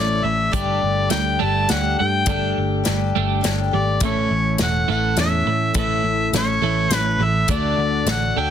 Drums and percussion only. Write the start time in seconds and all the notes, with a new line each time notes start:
0.53 kick, closed hi-hat
1.10 snare, closed hi-hat
1.69 snare, closed hi-hat
2.26 kick, closed hi-hat
2.85 snare, closed hi-hat
3.44 snare, closed hi-hat
4.00 kick, closed hi-hat
4.58 snare, closed hi-hat
5.17 snare, closed hi-hat
5.74 kick, closed hi-hat
6.34 snare, closed hi-hat
6.91 snare, closed hi-hat
7.48 kick, closed hi-hat
8.07 snare, closed hi-hat